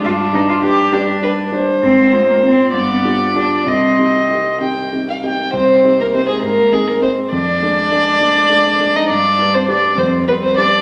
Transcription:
<<
  \new Staff \with { instrumentName = "Violin" } { \time 6/8 \key c \minor \tempo 4. = 67 d'4. g'8 b'8 c''8~ | c''4. d''4. | ees''4. g''8. f''16 g''8 | c''8. bes'16 c''16 aes'16 bes'8 aes'16 bes'16 c''8 |
d''2~ d''8. ees''16 | d''8. c''16 d''8 c''8 b'16 c''16 d''8 | }
  \new Staff \with { instrumentName = "Grand piano" } { \time 6/8 \key c \minor g,8 <g d' b'>8 <g d' b'>8 <g d' b'>8 <g d' b'>8 <g d' b'>8 | aes,8 <c' f' c''>8 <c' f' c''>8 g,8 <d' f' g'>8 <d' f' g'>8 | c,8 <c' ees' g'>8 <c' ees' g'>8 <c' ees' g'>8 <c' ees' g'>8 <c' ees' g'>8 | c,8 <c' ees' g'>8 <c' ees' g'>8 aes,8 <c' ees' aes'>8 <c' ees' aes'>8 |
f,8 <aes d' aes'>8 <aes d' aes'>8 <aes d' aes'>8 <aes d' aes'>8 <aes d' aes'>8 | g,8 <g g' b'>8 <g g' b'>8 f,8 <g g' b'>8 <g g' b'>8 | }
  \new Staff \with { instrumentName = "Cello" } { \time 6/8 \key c \minor f'8 ees'16 f'16 g'8 d'4 r8 | c'8 aes16 bes16 c'8 b4 d'8 | c'4. r4. | c'8. bes16 c'16 aes16 bes8 aes16 bes16 c'8 |
d'2~ d'8. ees'16 | d'8. c'16 d'8 c'8 b16 c'16 d'8 | }
>>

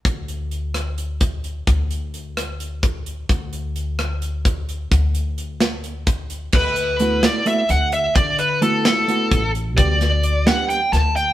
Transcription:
<<
  \new Staff \with { instrumentName = "Lead electric guitar" } { \time 7/8 \key d \major \tempo 4 = 130 r2. r8 | r2. r8 | r2. r8 | r2. r8 |
b'4. d''8 e''8 fis''8 e''8 | d''8 b'8 a'8 a'4. r8 | d''4. fis''8 g''8 a''8 g''8 | }
  \new Staff \with { instrumentName = "Hollow-body jazz guitar" } { \time 7/8 \key d \major r2. r8 | r2. r8 | r2. r8 | r2. r8 |
r4 <a b e' fis'>4 <a b e' fis'>8 r4 | r4 <a b e' fis'>4 <a b e' fis'>8 r4 | <g b d' g'>8 r4 <g b d' g'>8 r4. | }
  \new Staff \with { instrumentName = "Upright bass" } { \clef bass \time 7/8 \key d \major d,2.~ d,8 | d,2.~ d,8 | d,2.~ d,8 | d,2.~ d,8 |
d,2 r8 d,4 | d2 r8 a,,4 | d,2 r8 d,4 | }
  \new DrumStaff \with { instrumentName = "Drums" } \drummode { \time 7/8 <hh bd>8 hh8 hh8 <hh ss>8 hh8 <hh bd>8 hh8 | <hh bd>8 hh8 hh8 <hh ss>8 hh8 <hh bd>8 hh8 | <hh bd>8 hh8 hh8 <hh ss>8 hh8 <hh bd>8 hh8 | <hh bd>8 hh8 hh8 <hh sn>8 hh8 <hh bd>8 hh8 |
<cymc bd>8 hh8 hh8 <hh sn>8 hh8 hh8 hh8 | <hh bd>8 hh8 hh8 <hh sn>8 hh8 <hh bd>8 hh8 | <hh bd>8 <hh sn>8 hh8 <hh sn>8 hh8 <hh sn>8 hh8 | }
>>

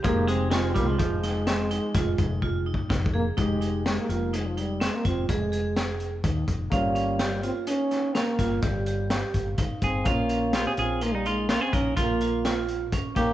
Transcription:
<<
  \new Staff \with { instrumentName = "Clean electric guitar" } { \time 7/4 \key f \minor \tempo 4 = 126 f8 aes8 aes8 g16 f16 f1 r4 | r1. r4 | r1. r8 aes'8 | f'4 f'16 aes'16 aes'8 f'16 ees'16 f'8 f'16 aes'16 bes'8 f'4. r4 g'8 | }
  \new Staff \with { instrumentName = "Vibraphone" } { \time 7/4 \key f \minor aes'4 f'8 f'4 ees'8 c'8 ees'8 f'8 ees'8 f'8 ees'8 ees'8 aes'8 | ees'8 ees'8 aes'8 f'8 ees'8 ees'8 c'8 f'8 aes'8 aes'8 aes'4 ees'4 | des'8 des'8 g'8 f'8 ees'8 ees'8 des'8 f'8 g'8 g'8 g'4 ees'4 | des'8 des'8 g'8 f'8 ees'8 ees'8 des'8 ees'8 f'8 f'8 f'4 des'4 | }
  \new Staff \with { instrumentName = "Grand piano" } { \time 7/4 \key f \minor <aes ees' g'>1.~ <aes ees' g'>4 | <aes ees' g'>1.~ <aes ees' g'>4 | <bes des' f'>1.~ <bes des' f'>4 | <bes des' f'>1.~ <bes des' f'>8 <bes des' ees'>8 | }
  \new Staff \with { instrumentName = "French horn" } { \time 7/4 \key f \minor bes8 c'8 c'8 bes16 aes16 aes1 r8 bes8 | aes4 aes16 bes16 bes8 aes16 f16 g8 aes16 bes16 c'8 aes4. r4. | g4. c'8 des'4 bes4 g4. r4 c'8 | bes4 bes16 c'16 c'8 bes16 g16 aes8 bes16 c'16 des'8 bes4. r4 bes8 | }
  \new Staff \with { instrumentName = "Fretless electric bass" } { \clef bass \time 7/4 \key f \minor f,,4. c,8 f,,2 f,,8 f,,4. f,,4 | f,,4. f,,2 f,,8 f,,2 ees,8 f,,8 | g,,2 r4. g,,8 g,,4. g,,8 g,,16 r16 g,,8 | bes,,4. bes,,2 bes,,8 bes,,2 g,,8 bes,,8 | }
  \new DrumStaff \with { instrumentName = "Drums" } \drummode { \time 7/4 <hh bd>8 hh8 <hh sn>8 <hh bd sn>8 <hh bd>8 <hh sn>8 <hh sn>8 hh8 <hh bd sn>8 <hh bd>8 \tuplet 3/2 { bd8 r8 bd8 <bd sn>8 bd8 r8 } | <hh bd>8 hh8 <hh sn>8 hh8 hh8 hh8 <hh sn>8 <hh bd>8 <hh bd>8 hh8 <hh sn>8 hh8 <hh bd>8 <hh bd>8 | <hh bd>8 hh8 <hh sn>8 hh8 hh8 <hh sn>8 <hh sn>8 <hh bd sn>8 <hh bd sn>8 hh8 <hh sn>8 <hh bd>8 <hh bd>8 <hh bd>8 | <hh bd>8 hh8 <hh sn>8 hh8 hh8 hh8 <hh sn>8 <hh bd>8 <hh bd sn>8 hh8 <hh sn>8 hh8 <hh bd>8 <hh bd sn>8 | }
>>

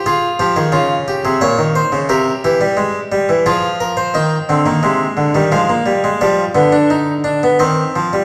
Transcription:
<<
  \new Staff \with { instrumentName = "Harpsichord" } { \time 3/4 \key f \minor \tempo 4 = 88 aes'8 g'16 aes'16 f'8 g'16 aes'16 des''8 c''8 | bes'8 g'4. aes'8 bes'16 c''16 | g''2 f''4 | d''2 ees''4 | }
  \new Staff \with { instrumentName = "Harpsichord" } { \clef bass \time 3/4 \key f \minor << { f'2. | g'2 f'4 | ees'8 c'16 bes16 aes8. g16 f16 bes8 aes16 | g8 b16 d'16 ees'8 d'16 b16 c'4 | } \\ { r8 f16 ees16 des8. c16 bes,16 ees8 des16 | c8 e16 g16 aes8 g16 e16 f4 | ees8 d16 ees16 c8 d16 ees16 aes8 g8 | f8 d4. ees8 f16 g16 | } >> }
>>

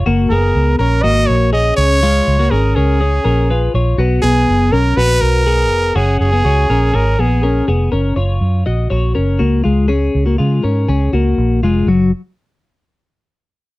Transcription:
<<
  \new Staff \with { instrumentName = "Trumpet" } { \time 4/4 \key fis \major \tempo 4 = 122 r8 ais'4 ais'8 dis''8 cis''8 dis''8 cis''8~ | cis''4 ais'8 gis'2 r8 | r8 gis'4 ais'8 b'8 ais'4. | gis'8 gis'4. ais'8 gis'4 r8 |
r1 | r1 | r1 | }
  \new Staff \with { instrumentName = "Clean electric guitar" } { \time 4/4 \key fis \major <ais fis'>8 <b gis'>4 <cis' ais'>8 <ais fis'>4 <cis' gis'>4 | <gis eis'>8. <ais fis'>16 <cis' gis'>8 <cis' ais'>8 <cis' gis'>8 <cis' ais'>8 <eis' b'>8 <eis' cis''>8 | <b fis'>8 <b gis'>4 <cis' ais'>8 <b fis'>4 <b gis'>4 | <cis' fis'>8. <b gis'>16 <cis' fis'>8 <cis' ais'>8 <cis' gis'>8 <b gis'>8 <cis' ais'>8 <b gis'>8 |
<cis' ais'>8 <eis' cis''>4 <fis' dis''>8 <fis' cis''>8 <cis' ais'>8 <ais fis'>8 <gis eis'>8 | <cis' gis'>8. <ais fis'>16 <gis eis'>8 <cis' ais'>8 <cis' gis'>8 <ais fis'>4 <gis eis'>8 | fis8 r2. r8 | }
  \new Staff \with { instrumentName = "Fingered electric bass" } { \clef bass \time 4/4 \key fis \major fis,,8 fis,,8 cis,8 ais,,8 gis,,8 ais,,4 cis,8~ | cis,8 cis,8 gis,,8 cis,4 ais,,4 ais,,8 | b,,8 b,,8 fis,,8 b,,8 ais,,8 b,,4 eis,,8 | fis,,8 fis,,8 cis,8 ais,,8 gis,,8 ais,,4 eis,,8 |
fis,,8 fis,,8 fis,8 ais,,8 ais,,8 fis,,8 cis,8 cis,8~ | cis,8 cis,8 cis8 gis,8 cis,8 cis,8 ais,,8 eis,,8 | fis,,8 r2. r8 | }
>>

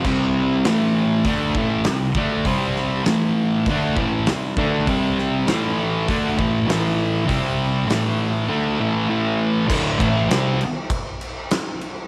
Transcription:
<<
  \new Staff \with { instrumentName = "Distorted electric guitar" } { \clef bass \time 4/4 \key c \lydian \tempo 4 = 99 <c g c'>4 <a, e a>4 <d a d'>8 <a, e a>8 <c g>8 <d a d'>8 | <c g c'>4 <a, e a>4 <d a d'>8 <a, e a>8 <c g>8 <d a d'>8 | <c g c'>4 <a, e a>4 <d a d'>8 <a, e a>8 <a, e a>4 | <c g c'>4 <a, e a>4 <d a d'>8 <a, e a>8 <a, e a>4 |
<d, a, d>8 <a, e a>8 <c g c'>8 r2 r8 | }
  \new DrumStaff \with { instrumentName = "Drums" } \drummode { \time 4/4 <cymc bd>4 <hho sn>4 <hho bd>8 bd8 <hho sn>8 bd8 | <hho bd>8 sn8 <hho sn>4 <hho bd>8 bd8 <hho sn>8 bd8 | <hho bd>8 sn8 <hho sn>4 <hho bd>8 bd8 <hho sn>4 | <hho bd>4 <hho sn>4 r4 r4 |
<cymc bd>8 <cymc bd>8 <cymc sn>8 cymc8 <cymc bd>8 cymc8 <cymc sn>8 cymc8 | }
>>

